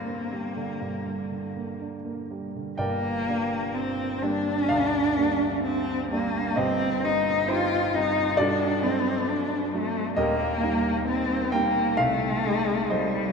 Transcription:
Already playing: grand piano G2 D3 G3 A#3 D4, cello A#3
0.05 grand piano A#3
0.32 grand piano G3
0.56 grand piano D3
0.81 grand piano G2
1.06 grand piano G3
1.32 grand piano D3
1.56 grand piano A#3
1.80 grand piano D4
2.05 grand piano A#3
2.31 grand piano G3
2.56 grand piano D3
2.78 grand piano G1 G2 A#4 D5 G5, cello A#3
3.28 grand piano G3 A#3 D4
3.74 cello C4
4.22 grand piano G3 A#3 D4, cello D4
4.69 grand piano D2 F5
5.17 grand piano G3 A#3 D4
5.64 cello C4
6.11 grand piano G3 A#3 D4, cello A#3
6.56 grand piano G1 G2 G4 C5 D#5, cello C4
7.04 grand piano G3 C4, cello D#4
7.48 grand piano D#4 G4 C5, cello F4
7.95 grand piano G3 C4, cello D#4
8.37 grand piano G2 F#4 A4 D5, cello D4
8.83 grand piano F#3 A3 D4, cello C4
9.29 cello D4
9.71 grand piano F#3 A3 D4, cello A3
10.17 grand piano D#1 D#2 G4 A#4 D#5, cello A#3
10.63 grand piano G3 A#3 D#4
11.07 cello C4
11.52 grand piano G3 A#3 D#4 G5, cello A#3
11.97 grand piano C2 F5, cello A3
12.46 grand piano A3 D#4
12.90 cello G3, grand piano A4 C5 D#5

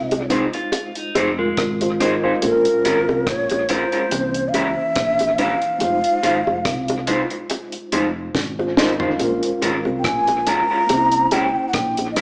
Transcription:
Already playing: fingered electric bass C2, tine electric piano G#3 D#4 F4 C5, shakuhachi F5
0.11 closed hi-hat, high bongo
0.30 clean electric guitar C4 D#4 G#4 C5, closed hi-hat, low bongo
0.53 clean electric guitar F4, muted clean electric guitar stroke, closed hi-hat
0.72 closed hi-hat, high bongo
0.95 clean electric guitar D#4, closed hi-hat
1.15 fingered electric bass F1, clean electric guitar C4 D#4 G#4 C5, closed hi-hat, high bongo
1.39 clean electric guitar G#3, tine electric piano F4 A#4
1.57 fingered electric bass G#1, kick, cross-stick, closed hi-hat
1.81 tine electric piano F4 C5, closed hi-hat, high bongo
2.00 clean electric guitar C4 D#4 G#4 C5, tine electric piano A#4 D#5, cross-stick, closed hi-hat, low bongo
2.24 clean electric guitar C4 D#4 G#4 C5, tine electric piano C5 F5
2.40 fingered electric bass A#1, tine electric piano G#3 C#4 F4, shakuhachi A#4, closed hi-hat, high bongo
2.46 tine electric piano A4
2.52 tine electric piano A#4
2.65 closed hi-hat
2.85 fingered electric bass G#1, clean electric guitar G#3 C#4 F4 A#4, closed hi-hat, high bongo
3.08 fingered electric bass C2, high bongo
3.27 fingered electric bass A#1, shakuhachi C#5, kick, cross-stick, closed hi-hat
3.50 closed hi-hat, high bongo
3.69 clean electric guitar G#3 C#4 F4 A#4, shakuhachi C5, closed hi-hat, low bongo
3.92 clean electric guitar G#3 C#4 F4 A#4, closed hi-hat
4.09 fingered electric bass C2, tine electric piano E3 A#3 C#4, closed hi-hat, high bongo
4.15 tine electric piano C5
4.34 closed hi-hat
4.48 shakuhachi F5
4.54 fingered electric bass C#2, clean electric guitar G3 C#4 E4 A#4, shakuhachi E5, closed hi-hat, high bongo
4.96 fingered electric bass A#1, kick, cross-stick, closed hi-hat
5.19 closed hi-hat, high bongo
5.38 clean electric guitar G3 C#4 E4 A#4, shakuhachi F5, closed hi-hat, low bongo
5.62 closed hi-hat
5.79 fingered electric bass F1, tine electric piano G#3 D#4 F4, closed hi-hat, high bongo
5.84 tine electric piano C5
6.04 closed hi-hat
6.23 fingered electric bass G#1, clean electric guitar G#3 D#4 F4 C5, closed hi-hat, high bongo
6.47 fingered electric bass F1, high bongo
6.65 fingered electric bass C2, kick, cross-stick, closed hi-hat
6.88 closed hi-hat, high bongo
7.07 clean electric guitar G#3 D#4 F4 C5, closed hi-hat, low bongo
7.30 muted clean electric guitar stroke, closed hi-hat
7.50 closed hi-hat, high bongo
7.72 closed hi-hat
7.92 fingered electric bass F1, clean electric guitar G#3 D#4 F4 C5, closed hi-hat, high bongo
8.35 fingered electric bass G#1, kick, snare
8.59 tine electric piano F4 C5, high bongo
8.77 clean electric guitar G#3 D#4 F4 C5, tine electric piano A#4 D#5, snare, low bongo
9.00 clean electric guitar G#3 D#4 F4 C5, tine electric piano C5 F5, floor tom
9.17 fingered electric bass A#1, tine electric piano G#3 C#4, closed hi-hat, high bongo
9.21 tine electric piano F4 A#4
9.43 closed hi-hat
9.62 fingered electric bass G#1, clean electric guitar G#3 C#4 F4 A#4, closed hi-hat, high bongo
9.85 fingered electric bass C2, high bongo
9.99 shakuhachi G5
10.04 fingered electric bass A#1, shakuhachi G#5, kick, cross-stick, closed hi-hat
10.27 closed hi-hat, high bongo
10.47 clean electric guitar G#3 C#4 F4 A#4, shakuhachi A#5, closed hi-hat, low bongo
10.70 clean electric guitar G#3 C#4 F4 A#4
10.87 fingered electric bass C2, tine electric piano A#3 C#4 D#4, closed hi-hat, high bongo
10.93 tine electric piano C5
10.97 tine electric piano E4
11.12 closed hi-hat
11.31 fingered electric bass C#2, clean electric guitar G3 C#4 E4 A#4, shakuhachi G5, closed hi-hat, high bongo
11.68 shakuhachi F#5
11.73 fingered electric bass A#1, shakuhachi G5, kick, cross-stick, closed hi-hat
11.97 closed hi-hat, high bongo
12.12 shakuhachi D#5
12.16 clean electric guitar G3 C#4 E4 A#4, shakuhachi E5, cross-stick, closed hi-hat, low bongo

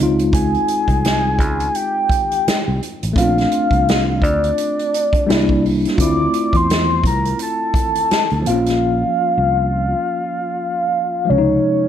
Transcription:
Already playing: tine electric piano G#3 C4
0.00 fingered electric bass C#2, tine electric piano D#4 F4, closed hi-hat
0.19 closed hi-hat
0.33 soft synth lead G#5, kick, closed hi-hat
0.54 closed hi-hat
0.68 closed hi-hat
0.88 fingered electric bass C2, kick, closed hi-hat
1.05 snare, closed hi-hat
1.39 fingered electric bass C#2, kick, closed hi-hat
1.60 closed hi-hat
1.75 soft synth lead G5, closed hi-hat
2.09 kick, closed hi-hat
2.31 closed hi-hat
2.47 muted fingered electric bass stroke, snare, closed hi-hat
2.68 fingered electric bass C2
2.83 closed hi-hat
3.03 fingered electric bass A1, closed hi-hat
3.13 fingered electric bass A#1, tine electric piano A3 C4, soft synth lead F5, kick
3.18 tine electric piano C#4 F4, closed hi-hat
3.24 tine electric piano D4
3.38 snare, closed hi-hat
3.52 closed hi-hat
3.71 fingered electric bass C2, kick, closed hi-hat
3.89 snare, closed hi-hat
4.22 fingered electric bass D2, soft synth lead D5, kick, closed hi-hat
4.44 closed hi-hat
4.58 closed hi-hat
4.79 closed hi-hat
4.94 closed hi-hat
5.13 kick, closed hi-hat
5.26 fingered electric bass C2, tine electric piano G3 A#3 D4 E4, closed hi-hat
5.30 snare
5.49 kick
5.66 open hi-hat
5.85 snare, closed hi-hat
5.96 fingered electric bass D2, tine electric piano A3 F4, kick, closed hi-hat
6.00 tine electric piano C4 E4, soft synth lead D6
6.34 closed hi-hat
6.53 fingered electric bass E2, soft synth lead C6, kick, closed hi-hat
6.70 snare, closed hi-hat
7.04 fingered electric bass C2, soft synth lead A#5, kick, closed hi-hat
7.25 closed hi-hat
7.39 soft synth lead A5, closed hi-hat
7.74 kick, closed hi-hat
7.95 closed hi-hat
8.11 muted fingered electric bass stroke, snare, closed hi-hat
8.30 fingered electric bass D2, closed hi-hat
8.42 tine electric piano F3 A#3
8.46 fingered electric bass A#1, tine electric piano C4 F4, soft synth lead F5, closed hi-hat
8.54 tine electric piano C#4
8.66 snare, closed hi-hat
9.38 fingered electric bass C2
11.25 tine electric piano F3 G#3
11.29 fingered electric bass C#2, tine electric piano C3 C#4, soft synth lead C#5
11.38 tine electric piano D#4

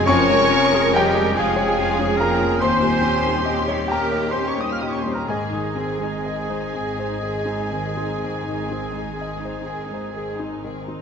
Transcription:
0.04 double bass section F1, grand piano F2 C#6, viola section F3 C#4, french horn section C#4, violin section F4 C#6, cello section A#4, oboe C#5, trumpet C#5, clarinet C#5, flute section G#5
0.09 grand piano C#5 G#5
0.29 grand piano F3, viola section G#3 F4, violin section C#4
0.49 viola section F3 C#4, grand piano C#4, violin section F4
0.72 viola section G#3 F4, violin section C#4, grand piano G#4
0.93 viola section F3 C#4, french horn section G3, violin section F4 G5, trumpet G4, oboe G4, clarinet G4, grand piano C#5 G5, flute section D#5
0.99 grand piano G4
1.13 viola section G#3 F4, violin section C#4, grand piano G#4
1.35 double bass section F1, viola section F3 C#4, french horn section G#3, violin section F4 G#5, trumpet G#4, oboe G#4, cello section G#4, clarinet G#4, flute section F5, grand piano G#5
1.40 grand piano G#4 F5
1.57 viola section G#3 F4, violin section C#4, grand piano C#5
1.78 viola section F3 C#4, violin section F4, grand piano G#4
1.98 viola section G#3 F4, grand piano C#4, violin section C#4
2.17 viola section F3 C#4, grand piano F3 A#4 A#5, french horn section A#3, violin section F4 A#5, oboe A#4, trumpet A#4, clarinet A#4, flute section G5
2.39 viola section G#3 F4, grand piano C#4, violin section C#4
2.59 double bass section D#2, grand piano D#2 C6, viola section A#3 C#4, french horn section C4, violin section G4 C6, cello section G4, trumpet C5, oboe C5, clarinet C5, flute section G#5
2.63 grand piano C5
2.80 grand piano A#2, viola section G3 A#3, violin section D#4
3.01 viola section A#3 C#4, grand piano C#4, violin section G4
3.24 viola section G3 A#3, violin section D#4, grand piano G4
3.45 viola section A#3 C#4, violin section G4, grand piano D#5
3.68 viola section G3 A#3, violin section D#4, grand piano C#5
3.88 double bass section D#2, viola section A#3 C#4, violin section G4 A#5, clarinet A#4, trumpet A#4, oboe A#4, grand piano G5 A#5, flute section G5
3.92 french horn section A#3, grand piano A#4
4.12 viola section G3 A#3, violin section D#4, grand piano C#5
4.30 french horn section C4, trumpet C5, clarinet C5, oboe C5, grand piano C5 C6, flute section G#5, violin section C6
4.35 viola section A#3 C#4, grand piano G4, violin section G4
4.47 french horn section C#4, oboe C#5, trumpet C#5, clarinet C#5, flute section A#5, grand piano C#6, violin section C#6
4.58 viola section G3 A#3, grand piano C#4 D#6, violin section D#4 D#6, french horn section D#4, oboe D#5, clarinet D#5
4.63 trumpet D#5, flute section C6
4.71 french horn section F4, oboe F5, clarinet F5, trumpet F5, flute section C#6, violin section F6, grand piano F6
4.80 grand piano A#2 D#6, viola section A#3 C#4, french horn section D#4, clarinet D#5, oboe D#5, trumpet D#5, flute section C6, violin section D#6
4.84 violin section G4
4.90 french horn section C#4, oboe C#5, clarinet C#5, trumpet C#5, flute section A#5, grand piano C#6, violin section C#6
4.99 french horn section C4, oboe C5, trumpet C5, flute section G#5, violin section C6, grand piano C6
5.03 viola section G3 A#3, grand piano C#4, violin section D#4, clarinet C5
5.13 oboe A#4, trumpet A#4, flute section G5, violin section A#5, grand piano A#5
5.17 french horn section A#3, clarinet A#4
5.27 double bass section G#1, grand piano G#2 G#4 D#5 G#5, viola section D#3 C4, french horn section G#3, oboe G#4, trumpet G#4, violin section G#4 G#5, clarinet G#4, cello section G#4, flute section D#5
5.51 grand piano D#3, viola section G#3 D#4, violin section D#4
5.74 viola section D#3 C4, grand piano C4, violin section G#4
5.98 viola section G#3 D#4, violin section D#4, grand piano G#4
6.23 viola section D#3 C4, violin section G#4, grand piano D#5
6.49 viola section G#3 D#4, violin section D#4, grand piano C5
6.74 double bass section G#1, viola section D#3 C4, violin section G#4, grand piano G#5
6.98 viola section G#3 D#4, violin section D#4, grand piano C5
7.22 viola section D#3 C4, grand piano G#4, violin section G#4
7.45 viola section G#3 D#4, grand piano C4, violin section D#4
7.71 viola section D#3 C4, grand piano D#3, violin section G#4
7.96 viola section G#3 D#4, grand piano C4, violin section D#4
8.19 double bass section G#1, viola section D#3 C4, violin section G#4
8.24 grand piano G#2
8.44 viola section G#3 D#4, violin section D#4
8.49 grand piano D#3
8.67 viola section D#3 C4, violin section G#4
8.72 grand piano C4
8.92 viola section G#3 D#4, violin section D#4
8.98 grand piano G#4
9.16 viola section D#3 C4, violin section G#4
9.21 grand piano D#5
9.40 viola section G#3 D#4, violin section D#4
9.45 grand piano C5
9.64 double bass section G#1, viola section D#3 C4, violin section G#4
9.69 grand piano G#5
9.87 viola section G#3 D#4, violin section D#4
9.93 grand piano C5
10.12 viola section D#3 C4, violin section G#4
10.16 grand piano G#4
10.37 viola section G#3 D#4, grand piano C4, violin section D#4
10.64 viola section D#3 C4, grand piano D#3, violin section G#4
10.87 viola section G#3 D#4, grand piano C4, violin section D#4

